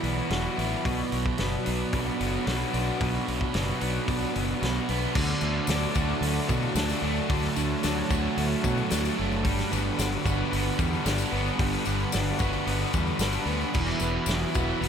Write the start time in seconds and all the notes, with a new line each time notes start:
Already playing: E3 B3 E4 F#4 D5 B5
0.03 B1 F#3 B3, open hi-hat
0.30 E1 E3 F#4, snare, open hi-hat
0.57 A1 B3 E4, open hi-hat
0.84 B1 B2 F#4, kick, open hi-hat
1.11 B1 F#3, open hi-hat
1.26 kick
1.38 F#1 B2 B3, snare, open hi-hat
1.64 B1 F#3 B3, open hi-hat
1.92 B1 B2 D4, kick, open hi-hat
2.19 F#1 F#3 B3, open hi-hat
2.46 B1 B2 F#4, snare, open hi-hat
2.73 B1 B3 D4, open hi-hat
3.01 B1 B2, kick, open hi-hat
3.27 B1 F#3, open hi-hat
3.41 kick
3.54 F#1 B2 B3, snare, open hi-hat
3.81 B1 F#3 B3, open hi-hat
4.07 B1 B2 D4, kick, open hi-hat
4.35 F#1 F#3 B3, open hi-hat
4.61 B1 B2 F#4, snare, open hi-hat
4.88 B1 B3 D4, open hi-hat
5.15 D2 D3 F#4 D5 A5, kick, crash, tambourine
5.29 tambourine
5.41 D2 D3 A3, tambourine
5.67 D2 F#3 D4, snare, open hi-hat, tambourine
5.94 D2 A3 F#4, kick, tambourine
6.21 D2 D3 A3, open hi-hat, tambourine
6.48 B2 F#3, kick, tambourine
6.63 tambourine
6.75 D2 D4, snare, open hi-hat, tambourine
6.89 snare, tambourine
7.02 D2 A3
7.16 tambourine
7.30 D2 D3, kick, open hi-hat, tambourine
7.34 C#5
7.43 snare, tambourine
7.56 D2 D3 A3, tambourine
7.83 D2 F#3 D4, snare, open hi-hat, tambourine
8.10 D2 A3 F#4, kick, tambourine
8.37 D2 D3 A3, open hi-hat, tambourine
8.63 B2 F#3, kick, tambourine
8.77 tambourine
8.90 D2 D4, snare, open hi-hat, tambourine
9.05 tambourine
9.18 F#1 A3
9.32 tambourine
9.44 G1 G2 G3 F#5 B5, kick, open hi-hat, tambourine
9.59 snare, tambourine
9.71 G1 D3 B3, tambourine
9.98 G1 D4, snare, open hi-hat, tambourine
10.24 G1 B3 F#4, kick, tambourine
10.51 G1 D3 B3, open hi-hat, tambourine
10.78 E2 G3, kick, tambourine
10.93 tambourine
11.04 G1 D4, snare, open hi-hat, tambourine
11.18 tambourine
11.31 G1 B3
11.46 tambourine
11.59 G1 G2 G3, kick, open hi-hat, tambourine
11.73 tambourine
11.85 G1 D3 B3, tambourine
12.00 tambourine
12.12 G1 D4, snare, open hi-hat, tambourine
12.26 tambourine
12.38 G1 B3 F#4, kick, tambourine
12.53 tambourine
12.67 G1 D3 B3, open hi-hat, tambourine
12.79 tambourine
12.93 E2 G3, kick, tambourine
13.07 tambourine
13.19 G1 D4, snare, open hi-hat, tambourine
13.33 tambourine
13.46 D2 B3, tambourine
13.61 tambourine
13.72 E1 E2 E3 F#4 E5, kick, crash, tambourine
13.87 snare, tambourine
14.00 E1 E3 B3, tambourine
14.26 E1 F#3 E4, snare, open hi-hat, tambourine
14.54 E1 B3 F#4, kick, tambourine
14.81 E1 E3 B3, open hi-hat, tambourine